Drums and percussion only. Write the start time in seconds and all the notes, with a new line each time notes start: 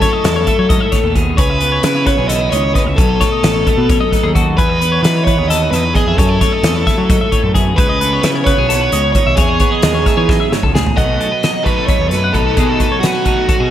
0.01 kick, snare, closed hi-hat
0.24 snare, closed hi-hat
0.47 kick, closed hi-hat
0.70 kick, closed hi-hat
0.92 kick, snare, closed hi-hat
1.16 kick, closed hi-hat
1.38 kick, closed hi-hat
1.60 closed hi-hat
1.83 snare, closed hi-hat
2.07 kick, snare, closed hi-hat
2.29 closed hi-hat
2.52 closed hi-hat
2.75 kick, snare, closed hi-hat
2.98 kick, closed hi-hat
3.21 kick, snare, closed hi-hat
3.43 snare, closed hi-hat
3.67 kick, closed hi-hat
3.89 kick, snare, closed hi-hat
4.13 kick, snare, closed hi-hat
4.35 kick, closed hi-hat
4.58 kick, closed hi-hat
4.82 closed hi-hat
5.04 snare, closed hi-hat
5.27 kick, closed hi-hat
5.50 snare, closed hi-hat
5.73 snare, closed hi-hat
5.95 kick, closed hi-hat
6.18 kick, closed hi-hat
6.41 kick, snare, closed hi-hat
6.64 snare, closed hi-hat
6.87 kick, snare, closed hi-hat
7.10 kick, closed hi-hat
7.32 kick, closed hi-hat
7.55 kick, closed hi-hat
7.78 kick, closed hi-hat
8.01 closed hi-hat
8.23 snare, closed hi-hat
8.47 kick, snare, closed hi-hat
8.70 snare, closed hi-hat
8.92 closed hi-hat
9.15 kick, closed hi-hat
9.37 kick, closed hi-hat
9.60 kick, closed hi-hat
9.82 snare, closed hi-hat
10.06 kick, snare, closed hi-hat
10.29 kick, snare
10.52 snare
10.63 kick
10.75 snare
10.86 floor tom
10.98 kick, closed hi-hat
11.21 closed hi-hat
11.43 snare, closed hi-hat
11.66 kick, closed hi-hat
11.88 kick, closed hi-hat
12.11 snare, closed hi-hat
12.34 kick, closed hi-hat
12.57 kick, closed hi-hat
12.80 kick, closed hi-hat
13.03 snare, closed hi-hat
13.26 kick, closed hi-hat
13.49 kick, closed hi-hat